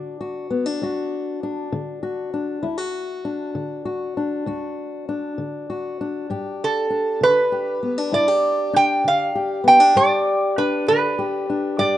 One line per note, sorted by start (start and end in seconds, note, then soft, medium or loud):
0.00 0.43 D3 medium
0.00 0.50 D4 medium
0.00 0.20 F#4 medium
0.21 0.83 F#4 medium
0.50 0.66 B3 medium
0.66 1.41 D4 soft
0.82 1.36 D2 medium
0.82 2.02 F#4 medium
1.43 2.33 D4 medium
1.72 2.27 D3 medium
2.03 2.60 F#4 medium
2.34 2.66 D4 medium
2.63 3.18 D2 medium
2.63 2.78 E4 medium
2.78 3.84 F#4 medium
3.25 4.17 D4 medium
3.55 4.10 D3 medium
3.85 4.46 F#4 medium
4.17 5.08 D4 medium
4.46 5.01 D2 medium
4.46 5.69 F#4 medium
5.09 6.00 D4 medium
5.38 5.93 D3 medium
5.70 6.27 F#4 medium
6.01 6.90 D4 medium
6.30 6.85 G2 medium
6.30 7.52 G4 medium
6.64 7.19 A4 medium
6.90 7.82 D4 medium
7.21 7.76 D3 medium
7.21 8.14 B4 medium
7.52 8.12 G4 medium
7.83 7.98 B3 medium
7.98 8.72 D4 soft
8.12 8.67 G2 medium
8.12 8.28 E4 medium
8.12 8.76 D5 medium
8.28 9.34 G4 medium
8.73 9.63 D4 medium
8.73 9.07 G5 loud
9.04 9.59 D3 medium
9.04 9.63 F5 medium
9.35 9.93 G4 medium
9.64 9.80 B3 medium
9.64 9.98 G5 loud
9.80 9.96 D4 soft
9.95 10.51 G2 medium
9.95 11.17 G4 medium
9.95 10.59 D5 loud
10.58 11.49 D4 medium
10.58 10.87 B4 medium
10.88 11.43 D3 medium
10.88 11.76 B4 medium
11.19 11.78 G4 medium
11.50 11.98 D4 medium
11.78 11.98 G2 medium
11.78 11.98 G4 medium
11.78 11.98 D5 medium